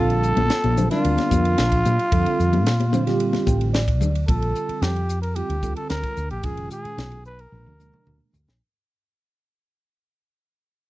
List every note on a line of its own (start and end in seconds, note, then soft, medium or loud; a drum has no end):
0.00 0.32 A#1 medium
0.00 0.50 D3 medium
0.00 0.50 G3 medium
0.00 0.50 C4 medium
0.00 0.51 F4 medium
0.00 0.87 F4 medium
0.00 0.51 A4 medium
0.00 0.87 A4 loud
0.10 ride medium
0.23 hi-hat pedal medium
0.37 0.48 A#1 medium
0.37 ride medium
0.37 high conga medium
0.37 low conga medium
0.50 snare loud
0.50 ride medium
0.64 0.87 A#1 medium
0.64 ride medium
0.64 high conga medium
0.76 0.86 D3 medium
0.76 0.86 G3 medium
0.76 0.86 C4 medium
0.76 0.86 F4 medium
0.76 0.86 C5 medium
0.76 hi-hat pedal medium
0.76 high conga medium
0.76 low conga medium
0.89 1.63 D3 medium
0.89 1.63 G3 medium
0.89 1.63 C4 medium
0.89 3.71 D4 medium
0.89 1.63 F4 medium
0.89 3.70 F4 medium
0.89 1.63 A#4 medium
0.89 snare soft
0.89 ride medium
1.04 1.16 D2 medium
1.04 ride medium
1.18 snare soft
1.18 ride medium
1.18 high conga medium
1.31 1.55 F2 medium
1.31 kick medium
1.31 hi-hat pedal medium
1.31 high conga medium
1.45 ride medium
1.58 1.82 A#1 medium
1.58 snare loud
1.58 ride medium
1.72 kick medium
1.72 ride medium
1.85 1.97 A#2 loud
1.85 hi-hat pedal medium
1.85 low conga medium
1.99 ride medium
2.11 2.24 F2 medium
2.11 2.66 D3 medium
2.11 2.66 G3 medium
2.11 2.67 C4 medium
2.11 2.67 F4 medium
2.11 2.67 A4 medium
2.11 kick loud
2.11 ride medium
2.26 muted fretless electric bass stroke soft
2.26 ride medium
2.40 2.66 F2 medium
2.40 hi-hat pedal medium
2.53 ride medium
2.53 high conga medium
2.53 low conga medium
2.66 3.37 A#2 loud
2.66 snare loud
2.66 ride medium
2.80 ride medium
2.80 high conga medium
2.92 3.02 D3 medium
2.92 3.02 G3 medium
2.92 3.02 C4 medium
2.92 3.02 F4 medium
2.92 3.02 C5 medium
2.92 hi-hat pedal medium
2.92 high conga medium
2.92 low conga medium
3.06 3.79 D3 medium
3.06 3.79 G3 medium
3.06 3.79 C4 medium
3.06 3.80 F4 medium
3.06 3.80 G4 medium
3.06 snare soft
3.06 ride medium
3.20 ride medium
3.33 snare soft
3.33 ride medium
3.33 high conga medium
3.47 4.01 A1 medium
3.47 3.72 G5 medium
3.47 kick medium
3.47 hi-hat pedal medium
3.47 high conga medium
3.61 ride medium
3.73 4.24 D5 medium
3.73 snare loud
3.73 ride medium
3.88 kick medium
3.88 ride medium
4.01 4.24 D2 medium
4.01 hi-hat pedal medium
4.01 low conga medium
4.15 ride medium
4.28 4.52 A#1 medium
4.28 5.01 D3 medium
4.28 5.01 G3 medium
4.28 5.01 C4 medium
4.28 5.01 F4 medium
4.28 4.83 A4 medium
4.28 5.02 A4 medium
4.28 kick loud
4.28 ride medium
4.42 ride medium
4.55 hi-hat pedal medium
4.69 muted fretless electric bass stroke soft
4.69 ride medium
4.82 5.41 F2 medium
4.82 5.21 G4 medium
4.82 snare loud
4.82 ride medium
4.96 ride soft
5.09 hi-hat pedal medium
5.22 5.37 A#4 medium
5.22 ride medium
5.36 5.54 D3 medium
5.36 5.54 G3 medium
5.36 5.54 C4 medium
5.36 5.55 F4 medium
5.36 5.75 G4 medium
5.36 5.55 G4 medium
5.36 ride medium
5.49 5.73 D2 medium
5.49 ride medium
5.62 6.18 D3 medium
5.62 6.18 G3 soft
5.62 6.18 C4 soft
5.62 6.18 F4 soft
5.62 6.18 A4 medium
5.62 kick medium
5.62 hi-hat pedal medium
5.76 5.89 A4 medium
5.76 ride medium
5.90 6.02 D2 medium
5.90 6.28 A#4 medium
5.90 snare medium
5.90 ride medium
6.03 kick medium
6.03 ride medium
6.17 6.29 D2 medium
6.17 hi-hat pedal medium
6.30 6.44 A#1 medium
6.30 6.46 G4 medium
6.30 ride medium
6.43 6.68 F1 medium
6.43 7.17 A#2 medium
6.43 7.17 D#3 medium
6.43 7.17 G#3 medium
6.43 7.17 C#4 medium
6.43 7.18 F4 medium
6.43 6.71 G#4 medium
6.43 kick medium
6.43 ride medium
6.57 ride medium
6.71 7.22 G#4 medium
6.71 hi-hat pedal medium
6.85 muted fretless electric bass stroke soft
6.85 ride soft
6.98 7.45 B1 medium
6.98 snare medium
6.98 ride medium
7.12 ride medium
7.25 7.42 B4 medium
7.25 hi-hat pedal medium
7.39 8.21 A#4 medium
7.39 ride medium
7.52 7.64 A#1 medium
7.52 7.71 B2 medium
7.52 7.71 F3 soft
7.52 7.71 G#3 soft
7.52 7.71 A#3 soft
7.52 7.71 D4 medium
7.52 high tom soft
7.66 7.90 D2 medium
7.66 high tom soft
7.79 8.34 B2 soft
7.79 8.34 F3 soft
7.79 8.34 G#3 soft
7.79 8.35 A#3 soft
7.79 8.35 D4 medium
7.79 hi-hat pedal medium
7.94 mid tom medium
8.07 8.19 D2 medium
8.07 mid tom medium
8.33 8.46 D2 medium
8.33 floor tom medium
8.33 hi-hat pedal medium
8.48 8.59 A#1 medium
8.48 snare medium